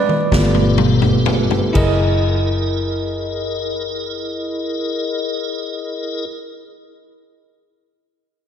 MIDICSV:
0, 0, Header, 1, 5, 480
1, 0, Start_track
1, 0, Tempo, 910470
1, 415, Tempo, 969305
1, 895, Time_signature, 12, 3, 24, 8
1, 895, Tempo, 1005025
1, 4105, End_track
2, 0, Start_track
2, 0, Title_t, "Tonewheel organ"
2, 0, Program_c, 0, 16
2, 172, Note_on_c, 0, 67, 68
2, 172, Note_on_c, 0, 69, 75
2, 173, Note_on_c, 0, 65, 68
2, 173, Note_on_c, 0, 71, 73
2, 888, Note_off_c, 0, 65, 0
2, 888, Note_off_c, 0, 67, 0
2, 888, Note_off_c, 0, 69, 0
2, 889, Note_off_c, 0, 71, 0
2, 896, Note_on_c, 0, 70, 71
2, 897, Note_on_c, 0, 64, 72
2, 897, Note_on_c, 0, 68, 64
2, 898, Note_on_c, 0, 75, 65
2, 3041, Note_off_c, 0, 68, 0
2, 3041, Note_off_c, 0, 70, 0
2, 3042, Note_off_c, 0, 64, 0
2, 3043, Note_off_c, 0, 75, 0
2, 4105, End_track
3, 0, Start_track
3, 0, Title_t, "Tine electric piano"
3, 0, Program_c, 1, 4
3, 0, Note_on_c, 1, 71, 75
3, 0, Note_on_c, 1, 74, 87
3, 169, Note_on_c, 1, 57, 40
3, 171, Note_on_c, 1, 59, 41
3, 173, Note_on_c, 1, 65, 48
3, 395, Note_off_c, 1, 71, 0
3, 405, Note_off_c, 1, 74, 0
3, 874, Note_off_c, 1, 57, 0
3, 875, Note_off_c, 1, 59, 0
3, 876, Note_off_c, 1, 65, 0
3, 882, Note_on_c, 1, 64, 70
3, 890, Note_on_c, 1, 68, 65
3, 894, Note_on_c, 1, 70, 62
3, 900, Note_on_c, 1, 75, 74
3, 3027, Note_off_c, 1, 64, 0
3, 3035, Note_off_c, 1, 68, 0
3, 3039, Note_off_c, 1, 70, 0
3, 3045, Note_off_c, 1, 75, 0
3, 4105, End_track
4, 0, Start_track
4, 0, Title_t, "Picked electric bass"
4, 0, Program_c, 2, 34
4, 170, Note_on_c, 2, 31, 102
4, 874, Note_off_c, 2, 31, 0
4, 895, Note_on_c, 2, 30, 96
4, 3040, Note_off_c, 2, 30, 0
4, 4105, End_track
5, 0, Start_track
5, 0, Title_t, "Drums"
5, 48, Note_on_c, 9, 47, 65
5, 101, Note_off_c, 9, 47, 0
5, 168, Note_on_c, 9, 47, 72
5, 170, Note_on_c, 9, 36, 70
5, 174, Note_on_c, 9, 38, 75
5, 221, Note_off_c, 9, 47, 0
5, 223, Note_off_c, 9, 36, 0
5, 226, Note_off_c, 9, 38, 0
5, 287, Note_on_c, 9, 45, 78
5, 340, Note_off_c, 9, 45, 0
5, 410, Note_on_c, 9, 45, 101
5, 460, Note_off_c, 9, 45, 0
5, 529, Note_on_c, 9, 43, 84
5, 578, Note_off_c, 9, 43, 0
5, 648, Note_on_c, 9, 43, 101
5, 698, Note_off_c, 9, 43, 0
5, 770, Note_on_c, 9, 43, 94
5, 820, Note_off_c, 9, 43, 0
5, 892, Note_on_c, 9, 49, 75
5, 895, Note_on_c, 9, 36, 94
5, 940, Note_off_c, 9, 49, 0
5, 943, Note_off_c, 9, 36, 0
5, 4105, End_track
0, 0, End_of_file